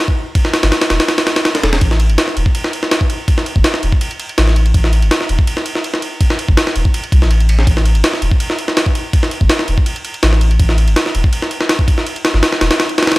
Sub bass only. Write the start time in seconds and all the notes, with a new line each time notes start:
0.63 G1
0.90 E1
1.63 E1
1.81 A1
2.09 G1
2.36 E1
3.56 G1
3.83 E1
4.38 A1
4.74 A1
5.02 G1
5.29 E1
6.48 G1
6.75 E1
7.12 C2
7.21 A1
7.67 A1
7.95 G1
8.22 E1
9.41 G1
9.68 E1
10.23 A1
10.60 A1
10.87 G1
11.15 E1
12.34 G1
12.61 E1